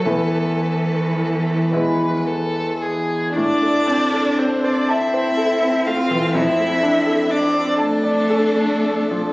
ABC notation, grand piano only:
X:1
M:6/8
L:1/16
Q:3/8=39
K:Am
V:1 name="Grand piano"
[E,,A,EB]6 [E,,^G,EB]6 | A,, A, C A C c a c A C A, E, | F,, A, D A D d a d A D A, F, |]